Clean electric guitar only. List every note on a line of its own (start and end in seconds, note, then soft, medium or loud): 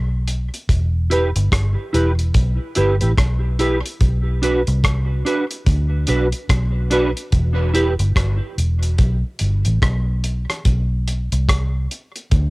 1.10 1.28 E4 medium
1.10 1.29 G4 medium
1.10 1.29 B4 medium
1.93 2.11 E4 medium
1.93 2.11 G4 medium
1.93 2.12 B4 medium
2.76 2.94 E4 medium
2.76 2.94 G4 medium
2.76 2.95 B4 medium
3.01 3.11 E4 soft
3.01 3.11 G4 medium
3.01 3.10 B4 medium
3.59 3.77 E4 medium
3.59 3.77 G4 medium
3.59 3.78 B4 loud
4.42 4.60 D4 medium
4.42 4.60 F#4 medium
4.42 4.61 B4 medium
5.25 5.43 D4 medium
5.25 5.44 F#4 medium
5.25 5.44 B4 medium
6.08 6.26 D4 medium
6.08 6.26 F#4 loud
6.08 6.27 B4 medium
6.90 7.09 D4 loud
6.90 7.09 F#4 loud
6.90 7.10 B4 loud
7.74 7.92 E4 loud
7.74 7.92 G4 loud
7.74 7.93 B4 medium